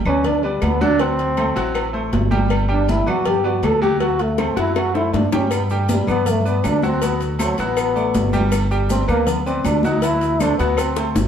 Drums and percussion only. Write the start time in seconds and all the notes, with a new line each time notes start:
0.05 high conga, low conga, low agogo, claves
0.24 cowbell, high conga, low conga, low agogo
0.43 high conga, low agogo
0.62 cowbell, high conga, low timbale, low agogo, claves
0.82 high conga
0.99 cowbell, high conga, low agogo
1.18 cowbell, high conga
1.37 cowbell, high conga, low timbale, low agogo, claves
1.57 cowbell, high conga
1.75 cowbell, high conga, low agogo, claves
1.94 high conga, low agogo
2.13 cowbell, high conga, low timbale
2.32 high conga, low agogo
2.50 cowbell, high conga, low agogo, claves
2.70 high conga
2.89 cowbell, high conga, low timbale, low agogo
3.07 high conga, low conga, low agogo, claves
3.26 cowbell, high conga, low conga, low agogo
3.44 high conga, low agogo
3.63 cowbell, high conga, low timbale, low agogo, claves
3.83 high conga
4.00 cowbell, high conga, low agogo
4.19 cowbell, high conga
4.38 cowbell, high bongo, high conga, low timbale, low agogo, claves
4.57 cowbell, high bongo
4.76 cowbell, high bongo, high conga, low agogo, claves
4.95 low bongo, high conga, low agogo
5.13 cowbell, low bongo, high conga, low timbale
5.33 low bongo, high conga, low agogo
5.51 cowbell, high conga, low agogo, claves, maracas
5.69 high conga, maracas
5.89 cowbell, high conga, low timbale, low agogo, maracas
6.08 high conga, low conga, low agogo, claves, maracas
6.26 cowbell, high conga, low conga, low agogo, maracas
6.45 high conga, low agogo, maracas
6.64 cowbell, high conga, low timbale, low agogo, claves, maracas
6.83 high conga, maracas
7.02 cowbell, high conga, low agogo, maracas
7.21 cowbell, high conga, maracas
7.39 cowbell, high conga, low timbale, low agogo, claves, maracas
7.58 cowbell, high conga, maracas
7.77 cowbell, high conga, low agogo, claves, maracas
7.96 high conga, low agogo, maracas
8.14 cowbell, high conga, low timbale, maracas
8.33 high conga, low agogo, maracas
8.52 cowbell, high conga, low agogo, claves, maracas
8.71 high conga, maracas
8.89 cowbell, high conga, low timbale, low agogo, maracas
9.08 high conga, low conga, low agogo, claves, maracas
9.27 cowbell, high conga, low conga, low agogo, maracas
9.46 high conga, low agogo, maracas
9.64 cowbell, high conga, low timbale, low agogo, claves, maracas
9.83 high conga, maracas
10.01 cowbell, high conga, low agogo, maracas
10.21 cowbell, high conga, maracas
10.40 cowbell, high conga, low timbale, low agogo, claves, maracas
10.59 cowbell, high conga, maracas
10.77 cowbell, high conga, low agogo, claves, maracas
10.96 high bongo, high conga, low agogo, maracas
11.16 cowbell, low bongo, high conga, low timbale, maracas